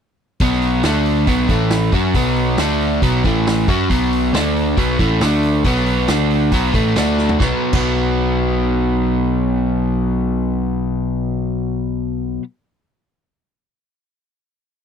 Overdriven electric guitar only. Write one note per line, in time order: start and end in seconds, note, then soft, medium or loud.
0.41 0.84 B2 medium
0.41 0.84 F#3 medium
0.41 0.84 B3 loud
0.84 1.27 D3 medium
0.84 1.27 A3 medium
0.84 1.28 D4 medium
1.27 1.49 B2 medium
1.27 1.49 F#3 loud
1.27 1.49 B3 medium
1.50 1.92 A2 medium
1.50 1.93 E3 loud
1.50 1.93 A3 loud
1.93 2.14 F#3 medium
1.93 2.15 C#4 medium
1.93 2.15 F#4 medium
2.15 2.58 B2 medium
2.15 2.58 F#3 medium
2.15 2.59 B3 loud
2.59 3.02 D3 medium
2.59 3.02 A3 medium
2.59 3.02 D4 loud
3.03 3.24 B2 medium
3.03 3.24 F#3 medium
3.03 3.24 B3 loud
3.25 3.68 A2 medium
3.25 3.68 E3 loud
3.25 3.68 A3 loud
3.69 3.89 F#3 medium
3.69 3.90 C#4 medium
3.69 3.90 F#4 medium
3.90 4.33 B2 medium
3.90 4.34 F#3 loud
3.90 4.34 B3 medium
4.34 4.77 D3 medium
4.34 4.77 A3 loud
4.34 4.78 D4 loud
4.77 4.99 B2 medium
4.77 4.99 F#3 medium
4.77 4.99 B3 medium
4.99 5.21 A2 medium
4.99 5.21 E3 loud
4.99 5.21 A3 loud
5.22 5.65 D3 medium
5.22 5.65 A3 medium
5.22 5.66 D4 medium
5.65 6.09 B2 medium
5.65 6.09 F#3 medium
5.65 6.09 B3 loud
6.09 6.52 D3 medium
6.09 6.53 A3 medium
6.09 6.53 D4 loud
6.53 6.73 B2 medium
6.53 6.75 F#3 loud
6.53 6.75 B3 loud
6.74 6.96 A2 medium
6.74 6.97 E3 loud
6.74 6.96 A3 loud
6.97 7.39 D3 medium
6.97 7.41 A3 medium
6.97 7.41 D4 medium
7.39 7.73 B2 medium
7.39 7.75 F#3 loud
7.43 7.77 B3 loud
7.73 12.42 B2 medium
7.73 12.43 F#3 loud
7.73 12.44 B3 medium